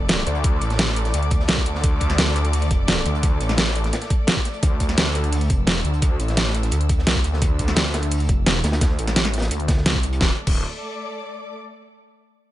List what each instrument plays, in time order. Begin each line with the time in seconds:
Already playing: detuned saw bass F1, string section A3 A4 D5 D6
0.09 snare, closed hi-hat
0.17 snare
0.27 detuned saw bass D2, closed hi-hat
0.35 closed hi-hat
0.44 kick, closed hi-hat
0.61 detuned saw bass A1, closed hi-hat
0.70 snare, closed hi-hat
0.79 snare, closed hi-hat
0.88 snare
0.96 closed hi-hat
1.05 snare, closed hi-hat
1.14 detuned saw bass D2, closed hi-hat
1.23 closed hi-hat
1.31 kick, closed hi-hat
1.40 snare
1.48 detuned saw bass C2, snare, closed hi-hat
1.57 kick, closed hi-hat
1.66 detuned saw bass D2, closed hi-hat
1.75 snare
1.84 detuned saw bass D2, kick, closed hi-hat
2.00 kick, closed hi-hat
2.10 snare, closed hi-hat
2.18 detuned saw bass D2, snare, closed hi-hat
2.27 snare
2.36 snare, closed hi-hat
2.45 closed hi-hat
2.53 closed hi-hat, open hi-hat
2.62 closed hi-hat
2.71 detuned saw bass F1, kick, closed hi-hat
2.88 snare, closed hi-hat
2.98 snare
3.06 detuned saw bass D2, closed hi-hat
3.15 closed hi-hat
3.23 kick, closed hi-hat
3.41 detuned saw bass A1, closed hi-hat
3.49 snare, closed hi-hat
3.58 snare, closed hi-hat
3.67 snare
3.75 closed hi-hat
3.84 snare, closed hi-hat
3.93 snare, closed hi-hat
4.02 snare, closed hi-hat
4.10 kick, closed hi-hat
4.27 snare, closed hi-hat
4.36 kick, snare
4.45 snare, closed hi-hat
4.54 closed hi-hat
4.63 detuned saw bass D2, kick, closed hi-hat
4.80 kick, closed hi-hat
4.89 snare, closed hi-hat
4.97 detuned saw bass D2, snare, closed hi-hat
5.06 string section E6, snare
5.15 snare, closed hi-hat
5.24 closed hi-hat
5.33 closed hi-hat, open hi-hat
5.41 closed hi-hat
5.50 detuned saw bass F1, kick, closed hi-hat
5.67 snare, closed hi-hat
5.76 snare
5.84 detuned saw bass D2, closed hi-hat
5.94 closed hi-hat
6.02 kick, closed hi-hat
6.20 detuned saw bass A1, closed hi-hat
6.28 snare, closed hi-hat
6.37 snare, closed hi-hat
6.46 snare
6.55 closed hi-hat
6.63 snare, closed hi-hat
6.71 detuned saw bass D2, closed hi-hat
6.81 closed hi-hat
6.89 kick, closed hi-hat
6.99 snare
7.07 detuned saw bass C2, snare, closed hi-hat
7.15 kick, closed hi-hat
7.24 detuned saw bass D2, closed hi-hat
7.33 snare
7.42 detuned saw bass D2, kick, closed hi-hat
7.59 kick, closed hi-hat
7.67 snare, closed hi-hat
7.76 detuned saw bass D2, snare, closed hi-hat
7.86 snare
7.94 snare, closed hi-hat
8.02 closed hi-hat
8.11 closed hi-hat, open hi-hat
8.20 closed hi-hat
8.29 detuned saw bass F1, kick, closed hi-hat
8.46 snare, closed hi-hat
8.55 snare
8.64 detuned saw bass D2, snare, closed hi-hat
8.72 snare, closed hi-hat
8.81 kick, snare, closed hi-hat
8.99 detuned saw bass A1, closed hi-hat
9.07 snare, closed hi-hat
9.16 snare, closed hi-hat
9.25 snare, closed hi-hat
9.34 closed hi-hat
9.38 snare, closed hi-hat
9.42 snare, closed hi-hat
9.51 detuned saw bass D2, closed hi-hat
9.60 closed hi-hat
9.68 kick, snare, closed hi-hat
9.77 snare
9.86 snare, closed hi-hat
9.95 kick
10.03 detuned saw bass C2, closed hi-hat
10.13 closed hi-hat
10.21 detuned saw bass D1, string section A3, kick, snare
10.26 string section A4
10.32 string section D5
10.37 string section D6
10.47 detuned saw bass D1, kick, crash